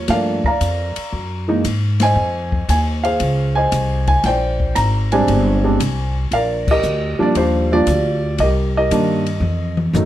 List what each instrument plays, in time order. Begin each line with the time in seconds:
Already playing: grand piano C#5
0.08 upright bass G2, grand piano F3 A3 A#3 D4 D5 F5, kick, snare, ride
0.12 grand piano A#4
0.44 grand piano D5 F5 A#5, muted upright bass stroke, kick
0.61 upright bass F2, kick, hi-hat pedal, ride
0.96 muted upright bass stroke, ride
1.12 upright bass F#2, kick
1.48 grand piano E3 G#3 A#3 D#4
1.65 upright bass G#2, kick, hi-hat pedal, ride
2.00 grand piano G#5, snare, ride
2.04 grand piano C5 D#5
2.15 upright bass F2
2.52 kick
2.68 upright bass D#2, grand piano G#5, kick, hi-hat pedal, ride
3.03 grand piano G#4 C5 F5, ride
3.20 upright bass C#2, kick, ride
3.55 grand piano C5 D#5 G#5
3.72 upright bass C2, kick, hi-hat pedal, ride
4.07 grand piano G#5, kick, ride
4.24 upright bass A#1, grand piano D5 G5, kick, snare, ride
4.28 grand piano C5
4.60 kick
4.75 upright bass G#1, grand piano A#5, kick, hi-hat pedal, ride
5.12 grand piano G3 G#3 C4 D4 C5 D5 G#5, ride
5.27 upright bass G1, kick, ride
5.64 grand piano G3 G#3 C4 D4
5.80 upright bass C2, kick, hi-hat pedal, ride
6.31 upright bass A#1, grand piano A#4 D5 F5, kick, ride
6.68 grand piano G4 A#4 D#5, kick, crash
6.83 upright bass D2, hi-hat pedal
7.19 grand piano F3 G3 A#3 D4 D5, muted upright bass stroke
7.35 upright bass D#2, grand piano F4 G4 C5, kick, ride
7.72 grand piano F3 G3 A#3 D4 F4 G4 D5
7.87 upright bass D2, kick, hi-hat pedal, ride
8.38 upright bass C2, grand piano A#4 D#5, kick, ride
8.43 grand piano G4
8.77 grand piano G4 A#4 D#5
8.91 upright bass G2, grand piano D#3 G3 A#3 D4, kick, hi-hat pedal, ride
9.26 ride
9.40 upright bass F2, mid tom
9.77 mid tom
9.93 upright bass F#2, grand piano D#3 F#3 A3 D#4, floor tom, hi-hat pedal